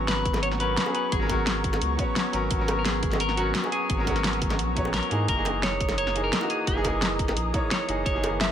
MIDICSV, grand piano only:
0, 0, Header, 1, 2, 480
1, 0, Start_track
1, 0, Key_signature, 5, "minor"
1, 0, Tempo, 346821
1, 1554, Time_signature, 4, 2, 24, 8
1, 11789, End_track
2, 0, Start_track
2, 0, Title_t, "Grand piano"
2, 0, Program_c, 0, 0
2, 0, Note_on_c, 0, 54, 85
2, 0, Note_on_c, 0, 59, 76
2, 0, Note_on_c, 0, 61, 74
2, 0, Note_on_c, 0, 82, 94
2, 784, Note_off_c, 0, 54, 0
2, 798, Note_off_c, 0, 59, 0
2, 809, Note_on_c, 0, 54, 81
2, 811, Note_off_c, 0, 61, 0
2, 822, Note_on_c, 0, 59, 75
2, 824, Note_off_c, 0, 82, 0
2, 837, Note_on_c, 0, 61, 75
2, 851, Note_on_c, 0, 70, 88
2, 1151, Note_off_c, 0, 54, 0
2, 1160, Note_off_c, 0, 59, 0
2, 1168, Note_off_c, 0, 61, 0
2, 1172, Note_on_c, 0, 54, 83
2, 1175, Note_off_c, 0, 70, 0
2, 1186, Note_on_c, 0, 59, 75
2, 1198, Note_on_c, 0, 61, 76
2, 1211, Note_on_c, 0, 68, 89
2, 1630, Note_off_c, 0, 54, 0
2, 1642, Note_off_c, 0, 59, 0
2, 1648, Note_off_c, 0, 61, 0
2, 1650, Note_on_c, 0, 54, 96
2, 1654, Note_off_c, 0, 68, 0
2, 1663, Note_on_c, 0, 59, 88
2, 1678, Note_on_c, 0, 61, 90
2, 1691, Note_on_c, 0, 70, 107
2, 1730, Note_off_c, 0, 54, 0
2, 1751, Note_on_c, 0, 54, 98
2, 1757, Note_off_c, 0, 59, 0
2, 1767, Note_off_c, 0, 61, 0
2, 1774, Note_off_c, 0, 70, 0
2, 1777, Note_on_c, 0, 59, 86
2, 1805, Note_on_c, 0, 61, 89
2, 1831, Note_on_c, 0, 70, 104
2, 2708, Note_off_c, 0, 54, 0
2, 2722, Note_off_c, 0, 59, 0
2, 2729, Note_on_c, 0, 54, 86
2, 2734, Note_off_c, 0, 61, 0
2, 2743, Note_on_c, 0, 59, 78
2, 2749, Note_off_c, 0, 70, 0
2, 2755, Note_on_c, 0, 61, 80
2, 2769, Note_on_c, 0, 73, 94
2, 3188, Note_off_c, 0, 54, 0
2, 3200, Note_off_c, 0, 59, 0
2, 3206, Note_off_c, 0, 61, 0
2, 3209, Note_on_c, 0, 54, 90
2, 3213, Note_off_c, 0, 73, 0
2, 3224, Note_on_c, 0, 59, 80
2, 3235, Note_on_c, 0, 61, 80
2, 3251, Note_on_c, 0, 70, 100
2, 3554, Note_off_c, 0, 54, 0
2, 3561, Note_off_c, 0, 59, 0
2, 3566, Note_off_c, 0, 61, 0
2, 3574, Note_on_c, 0, 54, 95
2, 3575, Note_off_c, 0, 70, 0
2, 3586, Note_on_c, 0, 59, 85
2, 3600, Note_on_c, 0, 61, 88
2, 3615, Note_on_c, 0, 70, 105
2, 3653, Note_off_c, 0, 54, 0
2, 3673, Note_on_c, 0, 54, 83
2, 3678, Note_off_c, 0, 59, 0
2, 3688, Note_off_c, 0, 61, 0
2, 3696, Note_off_c, 0, 70, 0
2, 3699, Note_on_c, 0, 59, 74
2, 3727, Note_on_c, 0, 61, 76
2, 3754, Note_on_c, 0, 70, 95
2, 4625, Note_off_c, 0, 54, 0
2, 4638, Note_off_c, 0, 59, 0
2, 4652, Note_off_c, 0, 61, 0
2, 4652, Note_on_c, 0, 54, 84
2, 4666, Note_off_c, 0, 70, 0
2, 4666, Note_on_c, 0, 59, 74
2, 4680, Note_on_c, 0, 61, 78
2, 4693, Note_on_c, 0, 70, 92
2, 4995, Note_off_c, 0, 54, 0
2, 5002, Note_off_c, 0, 59, 0
2, 5009, Note_off_c, 0, 61, 0
2, 5016, Note_off_c, 0, 70, 0
2, 5018, Note_on_c, 0, 54, 82
2, 5031, Note_on_c, 0, 59, 72
2, 5043, Note_on_c, 0, 61, 76
2, 5056, Note_on_c, 0, 68, 89
2, 5474, Note_off_c, 0, 54, 0
2, 5484, Note_off_c, 0, 59, 0
2, 5490, Note_off_c, 0, 61, 0
2, 5495, Note_on_c, 0, 54, 96
2, 5497, Note_off_c, 0, 68, 0
2, 5508, Note_on_c, 0, 59, 88
2, 5520, Note_on_c, 0, 61, 91
2, 5535, Note_on_c, 0, 70, 107
2, 5569, Note_off_c, 0, 54, 0
2, 5590, Note_on_c, 0, 54, 100
2, 5598, Note_off_c, 0, 59, 0
2, 5608, Note_off_c, 0, 61, 0
2, 5616, Note_off_c, 0, 70, 0
2, 5618, Note_on_c, 0, 59, 87
2, 5644, Note_on_c, 0, 61, 89
2, 5671, Note_on_c, 0, 70, 106
2, 6549, Note_off_c, 0, 54, 0
2, 6563, Note_off_c, 0, 59, 0
2, 6572, Note_on_c, 0, 54, 82
2, 6575, Note_off_c, 0, 61, 0
2, 6586, Note_on_c, 0, 59, 78
2, 6589, Note_off_c, 0, 70, 0
2, 6601, Note_on_c, 0, 61, 80
2, 6614, Note_on_c, 0, 73, 95
2, 7035, Note_off_c, 0, 54, 0
2, 7042, Note_off_c, 0, 59, 0
2, 7049, Note_off_c, 0, 61, 0
2, 7051, Note_on_c, 0, 52, 90
2, 7056, Note_off_c, 0, 73, 0
2, 7061, Note_on_c, 0, 58, 79
2, 7075, Note_on_c, 0, 63, 81
2, 7090, Note_on_c, 0, 68, 102
2, 7391, Note_off_c, 0, 52, 0
2, 7400, Note_off_c, 0, 58, 0
2, 7407, Note_off_c, 0, 63, 0
2, 7412, Note_on_c, 0, 52, 94
2, 7414, Note_off_c, 0, 68, 0
2, 7425, Note_on_c, 0, 58, 88
2, 7440, Note_on_c, 0, 63, 88
2, 7452, Note_on_c, 0, 68, 105
2, 7494, Note_off_c, 0, 52, 0
2, 7515, Note_on_c, 0, 52, 81
2, 7520, Note_off_c, 0, 58, 0
2, 7528, Note_off_c, 0, 63, 0
2, 7534, Note_off_c, 0, 68, 0
2, 7540, Note_on_c, 0, 58, 75
2, 7568, Note_on_c, 0, 63, 76
2, 7596, Note_on_c, 0, 68, 89
2, 8466, Note_off_c, 0, 52, 0
2, 8479, Note_off_c, 0, 58, 0
2, 8492, Note_off_c, 0, 63, 0
2, 8495, Note_on_c, 0, 52, 82
2, 8507, Note_off_c, 0, 68, 0
2, 8510, Note_on_c, 0, 58, 77
2, 8523, Note_on_c, 0, 63, 73
2, 8536, Note_on_c, 0, 68, 90
2, 8834, Note_off_c, 0, 52, 0
2, 8844, Note_off_c, 0, 58, 0
2, 8851, Note_off_c, 0, 63, 0
2, 8855, Note_on_c, 0, 52, 84
2, 8857, Note_off_c, 0, 68, 0
2, 8868, Note_on_c, 0, 58, 75
2, 8880, Note_on_c, 0, 63, 75
2, 8894, Note_on_c, 0, 66, 90
2, 9315, Note_off_c, 0, 52, 0
2, 9323, Note_off_c, 0, 58, 0
2, 9329, Note_off_c, 0, 63, 0
2, 9335, Note_on_c, 0, 52, 97
2, 9336, Note_off_c, 0, 66, 0
2, 9349, Note_on_c, 0, 58, 89
2, 9364, Note_on_c, 0, 63, 91
2, 9376, Note_on_c, 0, 68, 111
2, 9413, Note_off_c, 0, 52, 0
2, 9434, Note_on_c, 0, 52, 98
2, 9439, Note_off_c, 0, 58, 0
2, 9450, Note_off_c, 0, 63, 0
2, 9456, Note_off_c, 0, 68, 0
2, 9459, Note_on_c, 0, 58, 86
2, 9488, Note_on_c, 0, 63, 89
2, 9515, Note_on_c, 0, 68, 105
2, 10390, Note_off_c, 0, 52, 0
2, 10403, Note_off_c, 0, 58, 0
2, 10413, Note_on_c, 0, 52, 84
2, 10417, Note_off_c, 0, 63, 0
2, 10430, Note_on_c, 0, 58, 79
2, 10431, Note_off_c, 0, 68, 0
2, 10442, Note_on_c, 0, 63, 78
2, 10455, Note_on_c, 0, 73, 93
2, 10874, Note_off_c, 0, 52, 0
2, 10883, Note_off_c, 0, 58, 0
2, 10890, Note_off_c, 0, 63, 0
2, 10895, Note_on_c, 0, 52, 90
2, 10896, Note_off_c, 0, 73, 0
2, 10909, Note_on_c, 0, 58, 79
2, 10921, Note_on_c, 0, 63, 83
2, 10935, Note_on_c, 0, 68, 100
2, 11235, Note_off_c, 0, 52, 0
2, 11243, Note_off_c, 0, 58, 0
2, 11249, Note_off_c, 0, 63, 0
2, 11256, Note_on_c, 0, 52, 100
2, 11257, Note_off_c, 0, 68, 0
2, 11268, Note_on_c, 0, 58, 87
2, 11282, Note_on_c, 0, 63, 89
2, 11295, Note_on_c, 0, 68, 107
2, 11333, Note_off_c, 0, 52, 0
2, 11354, Note_on_c, 0, 52, 84
2, 11360, Note_off_c, 0, 58, 0
2, 11369, Note_off_c, 0, 63, 0
2, 11376, Note_off_c, 0, 68, 0
2, 11381, Note_on_c, 0, 58, 77
2, 11407, Note_on_c, 0, 51, 75
2, 11434, Note_on_c, 0, 68, 91
2, 11789, Note_off_c, 0, 51, 0
2, 11789, Note_off_c, 0, 52, 0
2, 11789, Note_off_c, 0, 58, 0
2, 11789, Note_off_c, 0, 68, 0
2, 11789, End_track
0, 0, End_of_file